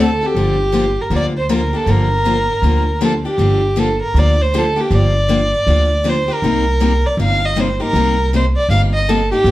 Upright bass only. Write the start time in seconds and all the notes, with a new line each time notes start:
Already playing: D2
0.35 G1
1.10 D2
1.86 G1
2.62 D2
3.38 G1
4.14 D2
4.90 G1
5.67 D2
6.42 C2
7.17 G1
7.93 C2
8.69 G1
9.44 G1